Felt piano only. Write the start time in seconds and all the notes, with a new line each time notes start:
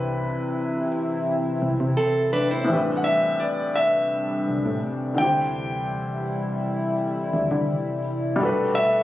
Already playing: C3 C4 D4 E4 B4
2.64 A2 E3 C4
2.70 D4 G4 B4
5.14 D3 D4
5.19 E4 G4
5.24 C5
8.36 G3 D4
8.41 F#4 A4
8.45 B4